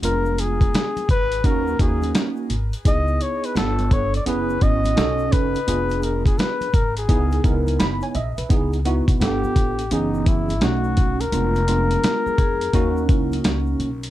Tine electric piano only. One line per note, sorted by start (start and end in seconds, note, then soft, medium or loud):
0.03 1.02 G#3 medium
0.03 1.03 B3 medium
0.03 1.03 D4 medium
0.03 1.03 F4 medium
1.44 1.75 A#3 medium
1.44 1.75 C#4 medium
1.44 1.75 D#4 medium
1.44 1.75 F#4 loud
1.79 2.52 A#3 medium
1.79 2.52 C#4 medium
1.79 2.53 D#4 medium
1.79 2.53 F#4 medium
2.85 3.54 B3 medium
2.85 3.56 D#4 medium
2.85 3.56 E4 medium
2.85 3.56 G#4 medium
3.55 4.16 B3 medium
3.55 4.17 D4 medium
3.55 4.17 F4 medium
3.55 4.17 A4 medium
4.26 4.57 B3 medium
4.26 4.57 C#4 medium
4.26 4.57 E4 medium
4.26 4.57 G#4 medium
4.61 4.97 B3 medium
4.61 4.95 C#4 medium
4.61 4.97 E4 medium
4.61 4.96 F#4 medium
4.96 5.57 C#4 medium
4.96 5.58 D#4 medium
4.96 5.58 F#4 medium
4.96 5.58 A4 medium
5.67 6.67 B3 medium
5.67 6.67 D4 medium
5.67 6.67 F4 medium
5.67 6.68 G#4 medium
7.08 7.39 B3 medium
7.08 7.39 D#4 medium
7.08 7.40 E4 medium
7.08 7.40 G#4 medium
7.44 8.17 B3 medium
7.44 8.17 D#4 medium
7.44 8.17 E4 medium
7.44 7.80 A#4 medium
7.79 8.01 B5 medium
8.02 8.14 C#5 medium
8.02 8.14 G#5 medium
8.15 8.37 D#5 medium
8.15 8.48 E5 medium
8.38 8.72 B4 medium
8.49 8.77 B3 medium
8.49 8.78 D#4 medium
8.49 8.78 E4 medium
8.49 8.78 G#4 medium
8.85 9.19 B3 medium
8.85 9.21 D#4 medium
8.85 9.21 E4 medium
8.85 9.21 F#4 medium
9.20 9.81 B3 medium
9.20 9.82 D4 medium
9.20 9.82 F4 medium
9.20 9.82 A4 medium
9.91 10.53 E3 medium
9.91 10.52 B3 medium
9.91 10.52 C#4 medium
9.91 10.53 G#4 medium
10.61 11.22 A3 medium
10.61 11.23 C#4 medium
10.61 11.23 D#4 medium
10.61 11.23 F#4 medium
11.32 11.60 G#3 medium
11.32 11.60 B3 medium
11.32 11.60 D4 medium
11.32 11.61 F4 medium
11.67 12.67 G#3 medium
11.67 12.67 B3 medium
11.67 12.67 D4 medium
11.67 12.67 F4 medium
12.73 13.89 A#3 loud
12.73 13.89 C#4 medium
12.73 13.89 D#4 medium
12.73 13.89 F#4 loud